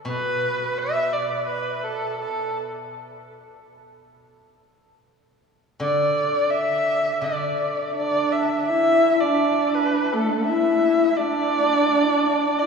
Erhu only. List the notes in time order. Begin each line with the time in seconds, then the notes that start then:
0.09 B4
0.78 E5
1.13 D5
1.47 B4
1.79 B4
1.84 A4
2.20 A4
5.81 D5
6.51 E5
7.24 D5
7.95 D5
8.32 E5
8.65 E5
9.20 D5
9.75 B4
10.13 A4
10.46 E5
11.17 D5
12.59 E5